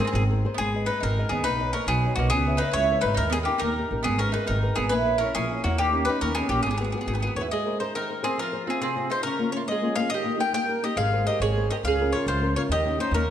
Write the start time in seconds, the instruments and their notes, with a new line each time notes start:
0.00 nylon-string guitar G#4 A#4 C5
0.05 mandolin C4 G#4
0.13 upright bass G#1, nylon-string guitar D#3, mandolin C4 G#4
0.30 nylon-string guitar G#4 A#4 C5
0.45 nylon-string guitar G#4 A#4 C5
0.54 mandolin B3 G#4
0.58 upright bass G#1, nylon-string guitar G#3
0.74 nylon-string guitar G#4 B4 D#5
0.86 mandolin D#4 B4, nylon-string guitar G#4 B4 D#5
1.00 upright bass G#1, nylon-string guitar D#3, mandolin D#4 A#4
1.18 nylon-string guitar G#4 B4 D#5
1.29 upright bass D#2, mandolin B3 G#4, nylon-string guitar G#4 B4 D#5
1.44 upright bass B1, nylon-string guitar B3, mandolin D#4 B4
1.60 nylon-string guitar B4 C#5 D#5
1.73 mandolin C#4 A#4, nylon-string guitar B4 C#5 D#5
1.87 upright bass B1, nylon-string guitar F#3, mandolin B3 G#4
2.05 nylon-string guitar B4 C#5 D#5
2.15 upright bass B1, mandolin A#3 F#4, nylon-string guitar B4
2.20 nylon-string guitar C#5 D#5
2.30 upright bass C#2, mandolin B3 G#4, nylon-string guitar C#4
2.47 nylon-string guitar B4 C#5 E5
2.57 mandolin D#4 B4
2.62 nylon-string guitar B4 C#5 E5
2.71 upright bass C#2, mandolin E4 C#5
2.76 nylon-string guitar G#3
2.91 nylon-string guitar B4 C#5 E5
3.01 upright bass G#1, mandolin D#4 B4
3.05 nylon-string guitar B4 C#5 E5
3.14 upright bass D#2, mandolin D#4 A#4
3.20 nylon-string guitar D#3
3.30 mandolin B3 G#4, nylon-string guitar D#4 G4
3.34 nylon-string guitar A#4
3.43 mandolin A#3 G4, nylon-string guitar D#4 G4
3.47 nylon-string guitar A#4
3.58 upright bass D#2, mandolin D#4 A#4
3.63 nylon-string guitar A#3
3.78 nylon-string guitar D#4 G4 A#4
3.90 upright bass A1, nylon-string guitar D#4 G4 A#4
4.03 upright bass G#1, nylon-string guitar G#3, mandolin B3 G#4
4.18 mandolin C#4 A#4, nylon-string guitar G#4 A#4 B4
4.32 mandolin D#4 B4, nylon-string guitar G#4 A#4 B4
4.47 upright bass G#1, nylon-string guitar D#3, mandolin D#4 A#4
4.62 nylon-string guitar G#4 A#4 B4
4.76 upright bass G#1, mandolin B3 G#4, nylon-string guitar G#4 A#4 B4
4.89 upright bass A#1, nylon-string guitar A#3, mandolin E4 B4
5.06 nylon-string guitar E4 A#4 C#5
5.18 mandolin C#4 A#4, nylon-string guitar E4 A#4
5.22 nylon-string guitar C#5
5.35 upright bass A#1, nylon-string guitar A#3, mandolin C#4 G#4
5.52 nylon-string guitar E4 A#4 C#5
5.64 upright bass E2, mandolin A#3 F#4, nylon-string guitar E4 A#4 C#5
5.78 upright bass D#2, nylon-string guitar D#3, mandolin A#3 G4
5.92 nylon-string guitar C#4 D#4 G4
6.05 nylon-string guitar C#4 D#4 G4, mandolin B4
6.09 mandolin D#4
6.21 upright bass D#2, nylon-string guitar A#3, mandolin C#4 A#4
6.35 mandolin B3 G#4, nylon-string guitar C#4 D#4 G4
6.49 upright bass A#1, mandolin A#3 G4, nylon-string guitar C#4 D#4
6.53 nylon-string guitar G4
6.63 upright bass G#1, nylon-string guitar G#3, mandolin B3 G#4
6.71 mandolin B3 G#4
6.78 mandolin B3 G#4, nylon-string guitar F#4 G#4 B4
6.84 mandolin G#4
6.90 mandolin B3 G#4
6.94 mandolin B3, nylon-string guitar F#4 G#4 B4
7.01 mandolin G#4
7.06 upright bass G#1, nylon-string guitar D#3, mandolin B3 G#4
7.14 mandolin B3 G#4
7.20 mandolin B3 G#4, nylon-string guitar F#4
7.24 mandolin B3, nylon-string guitar G#4 B4
7.36 upright bass D#2, nylon-string guitar F#4 G#4 B4, mandolin C#5
7.41 mandolin E4
7.51 nylon-string guitar G#3, mandolin G#4 D#5
7.65 nylon-string guitar G#4 A#4 C5
7.80 mandolin D#4 C5, nylon-string guitar G#4 A#4 C5
7.95 nylon-string guitar D#3, mandolin D#4 A#4
8.09 nylon-string guitar G#4 A#4 C5
8.23 mandolin C4 G#4, nylon-string guitar G#4 A#4 C5
8.38 nylon-string guitar F3, mandolin A#4
8.42 mandolin F4
8.52 nylon-string guitar F4 G#4 C5
8.67 mandolin C4 G#4, nylon-string guitar F4 G#4 C5
8.81 nylon-string guitar C3, mandolin C4 G#4
8.96 nylon-string guitar F4 G#4 C5
9.09 mandolin D#4 C5, nylon-string guitar F4 G#4 C5
9.23 nylon-string guitar C#3, mandolin C#4 A#4
9.39 nylon-string guitar A#3 C#4 F4
9.52 nylon-string guitar A#3 C#4 F4, mandolin C#5
9.57 mandolin F4
9.67 nylon-string guitar G#3, mandolin G#4 D#5
9.82 nylon-string guitar A#3 C#4 F4
9.96 nylon-string guitar A#3 C#4 F4, mandolin G#4 F5
10.10 nylon-string guitar D#3, mandolin D#5
10.14 mandolin G4
10.24 nylon-string guitar A#3 D#4 G4
10.38 nylon-string guitar A#3 D#4 G4, mandolin A#4 G5
10.53 nylon-string guitar A#3, mandolin A#4 G5
10.68 nylon-string guitar A#3 D#4 G4
10.83 nylon-string guitar A#3 D#4 G4, mandolin G4 D#5
10.97 upright bass G#1, nylon-string guitar G#3, mandolin G#4 F5
11.12 nylon-string guitar G#4 A#4 C5
11.26 mandolin G4 D#5, nylon-string guitar G#4 A#4 C5
11.40 upright bass G#1, nylon-string guitar D#3, mandolin G#4 C#5
11.56 nylon-string guitar G#4 A#4 C5
11.70 mandolin G4 D#5, nylon-string guitar G#4 A#4 C5
11.83 upright bass C#2, nylon-string guitar C#3, mandolin G#4 F5
11.99 nylon-string guitar C#4 F4 A#4
12.13 nylon-string guitar C#4 F4 A#4, mandolin F4 C#5
12.26 upright bass C#2, nylon-string guitar G#3, mandolin F4 C5
12.41 nylon-string guitar C#4 F4 A#4
12.56 nylon-string guitar C#4 F4 A#4, mandolin F4 C#5
12.69 upright bass D#2, nylon-string guitar D#3, mandolin G4 D#5
12.84 nylon-string guitar C#4 D#4 G4
12.99 nylon-string guitar C#4 D#4 G4, mandolin D#4 C5
13.11 upright bass D#2, nylon-string guitar A#3, mandolin A#4
13.15 mandolin C#4